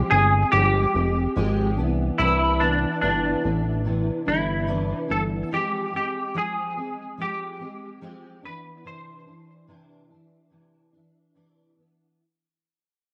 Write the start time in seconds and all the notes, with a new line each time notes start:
Already playing: F3 G#3 C4 G4
0.11 G1 G#3 C4 G#4
0.52 G1 F3 G#3 C4 G4
0.56 G4
0.94 F1 G#3 C4 G4
1.36 G#1 F3 G#3 C4 G4
1.77 C2 E3 B3 D4
2.18 C2 C3 E3 B3 D4 E4
2.60 B3 D4
2.64 E3
3.01 G1 C3 E3 B3 D4
3.43 A1 E3 B3 D4
3.84 C3 E3 B3 D4
4.25 G1 E3 B3 D4 E4
4.67 C3 E3 B3 D4
5.08 G1 E3 B3 D4 A4
5.51 F3 G#3 C4 G4
5.92 G#3 C4 G4
6.34 F3 G#3 C4 G#4
6.77 G#3 C4
7.18 F3 G#3 C4 G4
7.22 G4
7.59 G#3 C4 G4
8.01 F3 G#3 C4 G4
8.42 E3 B3 D4 B4
8.84 C3 E3 D4 C5
9.26 E3 D4
9.67 C3 E3 D4
10.10 E3 D4
10.50 C3 E3 D4
10.93 E3 D4
11.35 C3 E3 D4
11.76 E3 B3 D4